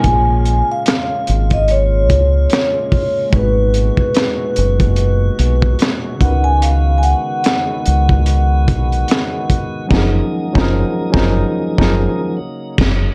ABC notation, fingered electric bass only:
X:1
M:4/4
L:1/16
Q:"Swing 16ths" 1/4=73
K:A#phr
V:1 name="Fingered electric bass" clef=bass
A,,,3 z3 G,,,4 C,,2 z4 | G,,,3 z3 F,,,4 B,,,2 z2 C,,2- | C,,3 z3 C,,4 B,,,2 z4 | F,,,2 z F,,,2 z F,,,2 z F,,,2 z3 F,,,2 |]